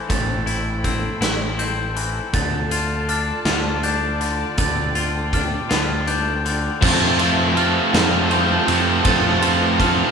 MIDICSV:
0, 0, Header, 1, 8, 480
1, 0, Start_track
1, 0, Key_signature, -1, "major"
1, 0, Tempo, 745342
1, 63, Time_signature, 6, 3, 24, 8
1, 6511, End_track
2, 0, Start_track
2, 0, Title_t, "Glockenspiel"
2, 0, Program_c, 0, 9
2, 0, Note_on_c, 0, 91, 66
2, 65, Note_off_c, 0, 91, 0
2, 68, Note_on_c, 0, 93, 81
2, 546, Note_on_c, 0, 88, 74
2, 547, Note_off_c, 0, 93, 0
2, 1025, Note_on_c, 0, 91, 73
2, 1026, Note_off_c, 0, 88, 0
2, 1506, Note_off_c, 0, 91, 0
2, 1506, Note_on_c, 0, 93, 85
2, 1987, Note_off_c, 0, 93, 0
2, 1992, Note_on_c, 0, 89, 72
2, 2469, Note_on_c, 0, 91, 74
2, 2470, Note_off_c, 0, 89, 0
2, 2949, Note_off_c, 0, 91, 0
2, 2953, Note_on_c, 0, 93, 92
2, 3431, Note_off_c, 0, 93, 0
2, 3436, Note_on_c, 0, 89, 78
2, 3913, Note_off_c, 0, 89, 0
2, 3915, Note_on_c, 0, 91, 73
2, 4392, Note_off_c, 0, 91, 0
2, 4399, Note_on_c, 0, 93, 91
2, 4873, Note_off_c, 0, 93, 0
2, 4875, Note_on_c, 0, 89, 89
2, 5350, Note_on_c, 0, 91, 72
2, 5351, Note_off_c, 0, 89, 0
2, 5828, Note_off_c, 0, 91, 0
2, 5830, Note_on_c, 0, 93, 97
2, 6308, Note_off_c, 0, 93, 0
2, 6310, Note_on_c, 0, 89, 86
2, 6511, Note_off_c, 0, 89, 0
2, 6511, End_track
3, 0, Start_track
3, 0, Title_t, "String section"
3, 0, Program_c, 1, 48
3, 0, Note_on_c, 1, 64, 63
3, 0, Note_on_c, 1, 69, 60
3, 0, Note_on_c, 1, 72, 58
3, 72, Note_on_c, 1, 79, 69
3, 1478, Note_off_c, 1, 64, 0
3, 1479, Note_off_c, 1, 72, 0
3, 1495, Note_on_c, 1, 74, 64
3, 1497, Note_off_c, 1, 79, 0
3, 1499, Note_on_c, 1, 65, 69
3, 1501, Note_on_c, 1, 81, 77
3, 2931, Note_off_c, 1, 81, 0
3, 2948, Note_on_c, 1, 79, 76
3, 4357, Note_off_c, 1, 74, 0
3, 4359, Note_off_c, 1, 65, 0
3, 4363, Note_off_c, 1, 69, 0
3, 4374, Note_off_c, 1, 79, 0
3, 4390, Note_on_c, 1, 65, 67
3, 4396, Note_on_c, 1, 69, 75
3, 4397, Note_on_c, 1, 81, 83
3, 4398, Note_on_c, 1, 72, 69
3, 6511, Note_off_c, 1, 65, 0
3, 6511, Note_off_c, 1, 69, 0
3, 6511, Note_off_c, 1, 72, 0
3, 6511, Note_off_c, 1, 81, 0
3, 6511, End_track
4, 0, Start_track
4, 0, Title_t, "Clean electric guitar"
4, 0, Program_c, 2, 27
4, 0, Note_on_c, 2, 52, 67
4, 0, Note_on_c, 2, 60, 65
4, 0, Note_on_c, 2, 64, 64
4, 56, Note_on_c, 2, 45, 69
4, 290, Note_off_c, 2, 64, 0
4, 298, Note_on_c, 2, 64, 73
4, 534, Note_off_c, 2, 60, 0
4, 542, Note_on_c, 2, 60, 58
4, 771, Note_off_c, 2, 64, 0
4, 779, Note_on_c, 2, 64, 74
4, 1014, Note_off_c, 2, 60, 0
4, 1022, Note_on_c, 2, 60, 66
4, 1023, Note_off_c, 2, 52, 0
4, 1262, Note_off_c, 2, 45, 0
4, 1263, Note_on_c, 2, 52, 63
4, 1503, Note_off_c, 2, 52, 0
4, 1503, Note_off_c, 2, 64, 0
4, 1505, Note_off_c, 2, 60, 0
4, 1505, Note_on_c, 2, 50, 66
4, 1749, Note_on_c, 2, 65, 81
4, 1987, Note_on_c, 2, 62, 68
4, 2223, Note_off_c, 2, 65, 0
4, 2226, Note_on_c, 2, 65, 72
4, 2462, Note_off_c, 2, 62, 0
4, 2470, Note_on_c, 2, 62, 74
4, 2698, Note_off_c, 2, 50, 0
4, 2706, Note_on_c, 2, 50, 72
4, 2942, Note_off_c, 2, 50, 0
4, 2950, Note_on_c, 2, 50, 71
4, 3182, Note_off_c, 2, 65, 0
4, 3189, Note_on_c, 2, 65, 78
4, 3426, Note_off_c, 2, 62, 0
4, 3434, Note_on_c, 2, 62, 64
4, 3659, Note_off_c, 2, 65, 0
4, 3667, Note_on_c, 2, 65, 80
4, 3903, Note_off_c, 2, 62, 0
4, 3911, Note_on_c, 2, 62, 72
4, 4148, Note_off_c, 2, 50, 0
4, 4156, Note_on_c, 2, 50, 79
4, 4388, Note_off_c, 2, 65, 0
4, 4390, Note_off_c, 2, 62, 0
4, 4392, Note_off_c, 2, 50, 0
4, 6511, End_track
5, 0, Start_track
5, 0, Title_t, "Distorted electric guitar"
5, 0, Program_c, 3, 30
5, 4388, Note_on_c, 3, 53, 90
5, 4393, Note_on_c, 3, 57, 96
5, 4396, Note_on_c, 3, 60, 93
5, 4399, Note_on_c, 3, 65, 100
5, 4623, Note_off_c, 3, 65, 0
5, 4625, Note_on_c, 3, 65, 75
5, 4628, Note_off_c, 3, 60, 0
5, 4631, Note_on_c, 3, 60, 66
5, 4633, Note_off_c, 3, 57, 0
5, 4636, Note_on_c, 3, 57, 67
5, 4855, Note_off_c, 3, 53, 0
5, 4858, Note_on_c, 3, 53, 83
5, 4861, Note_off_c, 3, 57, 0
5, 4864, Note_on_c, 3, 57, 77
5, 4865, Note_off_c, 3, 60, 0
5, 4866, Note_off_c, 3, 65, 0
5, 4868, Note_on_c, 3, 60, 85
5, 4869, Note_on_c, 3, 65, 88
5, 5104, Note_off_c, 3, 60, 0
5, 5104, Note_off_c, 3, 65, 0
5, 5106, Note_on_c, 3, 65, 76
5, 5111, Note_on_c, 3, 60, 72
5, 5117, Note_off_c, 3, 57, 0
5, 5120, Note_on_c, 3, 57, 67
5, 5335, Note_off_c, 3, 53, 0
5, 5337, Note_on_c, 3, 53, 69
5, 5339, Note_off_c, 3, 57, 0
5, 5340, Note_off_c, 3, 60, 0
5, 5342, Note_on_c, 3, 57, 83
5, 5347, Note_on_c, 3, 60, 83
5, 5348, Note_off_c, 3, 65, 0
5, 5351, Note_on_c, 3, 65, 86
5, 5571, Note_off_c, 3, 65, 0
5, 5574, Note_on_c, 3, 65, 71
5, 5576, Note_off_c, 3, 60, 0
5, 5583, Note_off_c, 3, 57, 0
5, 5584, Note_on_c, 3, 60, 74
5, 5585, Note_on_c, 3, 57, 64
5, 5812, Note_off_c, 3, 60, 0
5, 5813, Note_off_c, 3, 53, 0
5, 5816, Note_on_c, 3, 53, 92
5, 5818, Note_off_c, 3, 57, 0
5, 5820, Note_on_c, 3, 60, 100
5, 5821, Note_on_c, 3, 57, 99
5, 5822, Note_off_c, 3, 65, 0
5, 5824, Note_on_c, 3, 65, 108
5, 6057, Note_off_c, 3, 60, 0
5, 6058, Note_off_c, 3, 65, 0
5, 6060, Note_on_c, 3, 65, 81
5, 6065, Note_on_c, 3, 60, 79
5, 6070, Note_off_c, 3, 57, 0
5, 6072, Note_on_c, 3, 57, 68
5, 6295, Note_off_c, 3, 53, 0
5, 6298, Note_on_c, 3, 53, 81
5, 6299, Note_off_c, 3, 57, 0
5, 6300, Note_off_c, 3, 60, 0
5, 6302, Note_on_c, 3, 57, 82
5, 6307, Note_off_c, 3, 65, 0
5, 6308, Note_on_c, 3, 60, 81
5, 6309, Note_on_c, 3, 65, 97
5, 6511, Note_off_c, 3, 53, 0
5, 6511, Note_off_c, 3, 57, 0
5, 6511, Note_off_c, 3, 60, 0
5, 6511, Note_off_c, 3, 65, 0
5, 6511, End_track
6, 0, Start_track
6, 0, Title_t, "Distorted electric guitar"
6, 0, Program_c, 4, 30
6, 5119, Note_on_c, 4, 53, 60
6, 5341, Note_off_c, 4, 53, 0
6, 6511, End_track
7, 0, Start_track
7, 0, Title_t, "Picked electric bass"
7, 0, Program_c, 5, 34
7, 66, Note_on_c, 5, 33, 94
7, 693, Note_off_c, 5, 33, 0
7, 779, Note_on_c, 5, 33, 82
7, 1409, Note_off_c, 5, 33, 0
7, 1501, Note_on_c, 5, 38, 95
7, 2131, Note_off_c, 5, 38, 0
7, 2222, Note_on_c, 5, 38, 98
7, 2852, Note_off_c, 5, 38, 0
7, 2947, Note_on_c, 5, 38, 95
7, 3574, Note_off_c, 5, 38, 0
7, 3679, Note_on_c, 5, 38, 96
7, 4301, Note_off_c, 5, 38, 0
7, 4395, Note_on_c, 5, 41, 103
7, 5018, Note_off_c, 5, 41, 0
7, 5111, Note_on_c, 5, 41, 93
7, 5527, Note_off_c, 5, 41, 0
7, 5589, Note_on_c, 5, 41, 91
7, 5797, Note_off_c, 5, 41, 0
7, 5827, Note_on_c, 5, 41, 107
7, 6452, Note_off_c, 5, 41, 0
7, 6511, End_track
8, 0, Start_track
8, 0, Title_t, "Drums"
8, 64, Note_on_c, 9, 36, 102
8, 65, Note_on_c, 9, 42, 86
8, 128, Note_off_c, 9, 36, 0
8, 130, Note_off_c, 9, 42, 0
8, 304, Note_on_c, 9, 42, 71
8, 368, Note_off_c, 9, 42, 0
8, 543, Note_on_c, 9, 36, 72
8, 543, Note_on_c, 9, 42, 61
8, 607, Note_off_c, 9, 36, 0
8, 608, Note_off_c, 9, 42, 0
8, 785, Note_on_c, 9, 38, 94
8, 785, Note_on_c, 9, 42, 73
8, 850, Note_off_c, 9, 38, 0
8, 850, Note_off_c, 9, 42, 0
8, 1025, Note_on_c, 9, 42, 61
8, 1089, Note_off_c, 9, 42, 0
8, 1266, Note_on_c, 9, 42, 66
8, 1330, Note_off_c, 9, 42, 0
8, 1504, Note_on_c, 9, 42, 74
8, 1505, Note_on_c, 9, 36, 92
8, 1568, Note_off_c, 9, 42, 0
8, 1569, Note_off_c, 9, 36, 0
8, 1747, Note_on_c, 9, 42, 65
8, 1811, Note_off_c, 9, 42, 0
8, 1989, Note_on_c, 9, 42, 60
8, 2053, Note_off_c, 9, 42, 0
8, 2225, Note_on_c, 9, 38, 92
8, 2225, Note_on_c, 9, 42, 66
8, 2289, Note_off_c, 9, 38, 0
8, 2289, Note_off_c, 9, 42, 0
8, 2469, Note_on_c, 9, 42, 60
8, 2533, Note_off_c, 9, 42, 0
8, 2710, Note_on_c, 9, 42, 70
8, 2775, Note_off_c, 9, 42, 0
8, 2948, Note_on_c, 9, 42, 85
8, 2951, Note_on_c, 9, 36, 94
8, 3012, Note_off_c, 9, 42, 0
8, 3015, Note_off_c, 9, 36, 0
8, 3190, Note_on_c, 9, 42, 71
8, 3254, Note_off_c, 9, 42, 0
8, 3432, Note_on_c, 9, 36, 77
8, 3434, Note_on_c, 9, 42, 73
8, 3497, Note_off_c, 9, 36, 0
8, 3498, Note_off_c, 9, 42, 0
8, 3675, Note_on_c, 9, 38, 94
8, 3675, Note_on_c, 9, 42, 82
8, 3740, Note_off_c, 9, 38, 0
8, 3740, Note_off_c, 9, 42, 0
8, 3912, Note_on_c, 9, 42, 75
8, 3977, Note_off_c, 9, 42, 0
8, 4158, Note_on_c, 9, 42, 77
8, 4223, Note_off_c, 9, 42, 0
8, 4395, Note_on_c, 9, 36, 120
8, 4395, Note_on_c, 9, 49, 116
8, 4459, Note_off_c, 9, 36, 0
8, 4459, Note_off_c, 9, 49, 0
8, 4632, Note_on_c, 9, 51, 84
8, 4696, Note_off_c, 9, 51, 0
8, 4874, Note_on_c, 9, 51, 77
8, 4939, Note_off_c, 9, 51, 0
8, 5116, Note_on_c, 9, 38, 118
8, 5116, Note_on_c, 9, 51, 83
8, 5181, Note_off_c, 9, 38, 0
8, 5181, Note_off_c, 9, 51, 0
8, 5350, Note_on_c, 9, 51, 79
8, 5414, Note_off_c, 9, 51, 0
8, 5590, Note_on_c, 9, 51, 86
8, 5655, Note_off_c, 9, 51, 0
8, 5826, Note_on_c, 9, 51, 115
8, 5829, Note_on_c, 9, 36, 112
8, 5890, Note_off_c, 9, 51, 0
8, 5894, Note_off_c, 9, 36, 0
8, 6069, Note_on_c, 9, 51, 81
8, 6133, Note_off_c, 9, 51, 0
8, 6309, Note_on_c, 9, 36, 80
8, 6311, Note_on_c, 9, 51, 83
8, 6373, Note_off_c, 9, 36, 0
8, 6375, Note_off_c, 9, 51, 0
8, 6511, End_track
0, 0, End_of_file